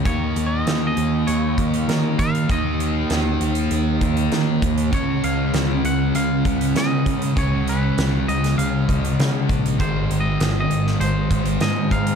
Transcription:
<<
  \new Staff \with { instrumentName = "Clean electric guitar" } { \time 4/4 \key des \major \tempo 4 = 99 \tuplet 3/2 { des''4 ees''8~ ees''8 ees''4 } des''4. f''8 | ees''2 r2 | des''8 f''4 ges''8 f''4 ees''4 | des''8 ces''4 ees''8 f''4 r4 |
\tuplet 3/2 { c''4 ees''8~ ees''8 ees''4 } c''4 ees''8 f''8 | }
  \new Staff \with { instrumentName = "Distorted electric guitar" } { \clef bass \time 4/4 \key des \major <ees bes ees'>1 | <ees bes ees'>1 | <des aes des'>1 | <des aes des'>1 |
<aes, ees aes>1 | }
  \new Staff \with { instrumentName = "Picked electric bass" } { \clef bass \time 4/4 \key des \major ees,8 ees,8 ees,8 ees,8 ees,8 ees,8 ees8 ees8 | ees,4 ees,8 ees,8 ees,8 ees,8 ees8 ees,8 | des,8 des,8 des,8 des,8 des,8 des,8 des8 des8 | des,4 des,8 des,8 des,8 des,8 des8 bes,,8 |
aes,,8 aes,,8 aes,,8 aes,,8 aes,,8 aes,,8 aes,8 aes,8 | }
  \new DrumStaff \with { instrumentName = "Drums" } \drummode { \time 4/4 <hh bd>8 hh8 <hh sn>8 hh8 hh8 <hh bd>16 hh16 <hh sn>8 <hh bd>16 hh16 | <hh bd>8 hh8 <hh sn>8 hh16 hh16 hh8 <hh bd>16 hh16 <hh sn>8 <hh bd>16 hh16 | <hh bd>8 hh8 <hh sn>8 hh8 hh8 <hh bd>16 hh16 <hh sn>8 <hh bd>16 hh16 | <hh bd>8 hh8 <hh sn>8 hh16 <hh sn>16 hh8 <hh bd>16 hh16 <hh sn>8 <hh bd>16 hh16 |
<hh bd>8 hh8 <hh sn>8 hh16 sn16 hh8 <hh bd>16 hh16 <hh sn>8 <hh bd>16 hh16 | }
>>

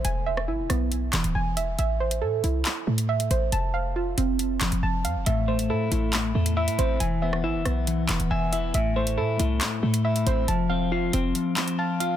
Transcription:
<<
  \new Staff \with { instrumentName = "Synth pluck" } { \time 4/4 \key a \minor \tempo 4 = 138 gis''8 e''8 e'8 b4 e8 gis''8 e''8 | e''8 c''8 a'8 e'4 a8 e''8 c''8 | a''8 f''8 f'8 c'4 f8 a''8 f''8 | e''8 c''8 a'8 e'4 a8 e''8 c''8 |
gis''8 e''8 e'8 b4 e8 gis''8 e''8 | e''8 c''8 a'8 e'4 a8 e''8 c''8 | a''8 f''8 f'8 c'4 f8 a''8 f''8 | }
  \new Staff \with { instrumentName = "Clean electric guitar" } { \time 4/4 \key a \minor r1 | r1 | r1 | a,8 a8 e'8 a8 a,8 a8 e'8 c'8 |
e8 b8 e''8 b8 e8 b8 e''8 e'8 | a,8 a8 e'8 a8 a,8 a8 e'8 c'8 | f8 c'8 f''8 c'8 f8 c'8 f''8 f'8 | }
  \new Staff \with { instrumentName = "808-style bass" } { \clef bass \time 4/4 \key a \minor e,,4 gis,,16 e,,16 b,,4 e,,16 d,,16 e,,4 | a,,4 a,8 c,8 r8 a,4 a,,8 | f,,4. f,,4 f,,16 f,,16 f,,8 f,16 f,,16 | a,,4 a,8 a,,4 e,8. a,16 a,,8 |
e,,4 gis,,16 e,,16 b,,4 e,,16 d,,16 e,,4 | a,,4 a,8 c,8 r8 a,4 a,,8 | f,,4. f,,8 r2 | }
  \new DrumStaff \with { instrumentName = "Drums" } \drummode { \time 4/4 hh8. ss16 r8 <hh ss>8 hh8 <hc hh>16 hh16 r8 hh8 | hh8. hh16 r8 hh8 <hc hh>8. hh16 r16 hh16 hh8 | hh4 r8 hh8 hh8 <hc hh>16 hh16 r8 hh8 | hh8. hh16 r8 hh8 <hc hh>8. hh16 r16 hh16 hh8 |
hh8. ss16 r8 <hh ss>8 hh8 <hc hh>16 hh16 r8 hh8 | hh8. hh16 r8 hh8 <hc hh>8. hh16 r16 hh16 hh8 | hh4 r8 hh8 hh8 <hc hh>16 hh16 r8 hh8 | }
>>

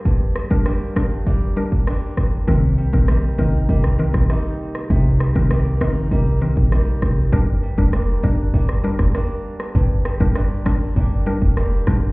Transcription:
<<
  \new Staff \with { instrumentName = "Synth pluck" } { \time 4/4 \key c \minor \tempo 4 = 99 r8. <g d' bes'>16 r8 <g d' bes'>16 r8. <g d' bes'>16 r4 r16 | <ees c' bes'>8. <ees c' bes'>16 r8 <ees c' bes'>16 r8. <ees c' bes'>16 r4 r16 | r8. <ees c' bes'>16 r8 <ees c' bes'>16 r8. <ees c' bes'>16 r4 r16 | <g d' bes'>8. <g d' bes'>16 r8 <g d' bes'>16 r8. <g d' bes'>16 r4 r16 |
r8. <g d' bes'>16 r8 <g d' bes'>16 r8. <g d' bes'>16 r8. <g d' bes'>16 r16 | }
  \new Staff \with { instrumentName = "Steel-string acoustic guitar" } { \time 4/4 \key c \minor <g, g bes d'>8 g8 <g bes d'>8 d'8 <g bes d'>4 <g bes d'>4 | c8 g8 <g bes ees'>8 ees'8 <g bes ees'>4 <g bes ees'>4 | c8 g8 <g bes ees'>8 ees'8 <g bes ees'>4 <g bes ees'>4 | g,8 g8 <g bes d'>8 d'8 <g bes d'>4 <g bes d'>4 |
g,8 g8 <g bes d'>8 d'8 <g bes d'>4 <g bes d'>4 | }
  \new Staff \with { instrumentName = "FM bass" } { \clef bass \time 4/4 \key c \minor r1 | c,8. bes,,8. c,8 c,8. bes,,16 r4 | c,8. c,8. r8 c,8. bes,,8. c,8 | g,,8. f,,8. g,,8 g,,8. f,,16 r4 |
g,,8. g,,8. r8 g,,8. f,,8. g,,8 | }
  \new DrumStaff \with { instrumentName = "Drums" } \drummode { \time 4/4 bd8 ss16 bd16 ss8 <bd ss>8 bd8. bd16 ss8 <bd ss>8 | bd8. bd16 ss8 bd8 bd16 ss8 <bd ss>16 ss8. ss16 | bd8 ss16 bd16 ss8 <bd ss>8 bd8. bd16 ss8 <bd ss>8 | bd8. bd16 ss8 bd8 bd16 ss8 <bd ss>16 ss8. ss16 |
bd8 ss16 bd16 ss8 <bd ss>8 bd8. bd16 ss8 <bd ss>8 | }
>>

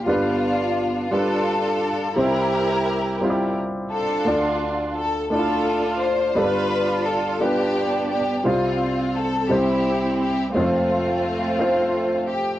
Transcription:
<<
  \new Staff \with { instrumentName = "String section" } { \time 6/8 \key g \dorian \tempo 4. = 57 << { f'4. a'4. | bes'2 r8 a'8~ | a'8 r8 a'8 a'4 c''8 | b'4 a'8 g'4 g'8 |
f'4 a'8 g'4 g'8 | f'2~ f'8 g'8 | } \\ { <b d'>4. <d' f'>4. | <e' g'>2 r8 <d' f'>8~ | <d' f'>4 r8 <d' f'>4. | <d' f'>4. <b d'>4. |
c'4. <c' e'>4. | <a c'>2~ <a c'>8 r8 | } >> }
  \new Staff \with { instrumentName = "Grand piano" } { \time 6/8 \key g \dorian <g d' f' b'>4 r8 <g d' f' b'>4 r8 | <g c' ees' e' c''>4 r8 <g c' e' f' g'>4 r8 | <a d' f' d''>4 r8 <a d' e' f' d''>4 r8 | <g d' f' a' b'>4 r8 <g d' f' b'>4 r8 |
<g c' f' c''>4 r8 <g c' e' c''>4 r8 | <aes a c' f' c''>4 r8 <a c' f' c''>4 r8 | }
  \new Staff \with { instrumentName = "Grand piano" } { \clef bass \time 6/8 \key g \dorian <g,, g,>2. | <c, c>2. | <d, d>2. | <g,, g,>2. |
<c, c>4. <c, c>4. | <f,, f,>2. | }
>>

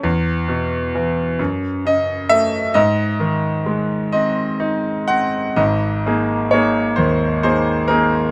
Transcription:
<<
  \new Staff \with { instrumentName = "Grand piano" } { \time 6/8 \key gis \phrygian \tempo 4. = 43 r2 dis''8 e''8 | dis''4. dis''4 fis''8 | \key aes \major ees''4 des''8 c''8 c''8 bes'8 | }
  \new Staff \with { instrumentName = "Grand piano" } { \time 6/8 \key gis \phrygian e,8 b,8 e8 fis,8 cis8 a8 | gis,8 dis8 gis8 bis8 dis'8 bis8 | \key aes \major <aes,, aes,>8 <bes ees' aes'>8 <bes ees' aes'>8 ees,8 <bes ees' aes'>8 <bes ees' aes'>8 | }
>>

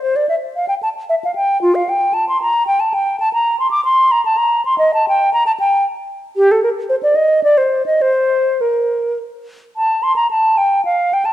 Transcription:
\new Staff \with { instrumentName = "Flute" } { \time 3/4 \key g \dorian \tempo 4 = 112 c''16 d''16 e''8 f''16 g''16 a''8 e''16 f''16 g''8 | f'16 f''16 g''8 a''16 c'''16 bes''8 g''16 a''16 g''8 | \key bes \major a''16 bes''8 c'''16 d'''16 c'''8 bes''16 a''16 bes''8 c'''16 | ees''16 a''16 g''8 bes''16 a''16 g''8 r4 |
g'16 a'16 bes'8 c''16 d''16 ees''8 d''16 c''8 ees''16 | c''4 bes'4 r4 | \key a \phrygian a''8 c'''16 bes''16 a''8 g''8 f''8 g''16 a''16 | }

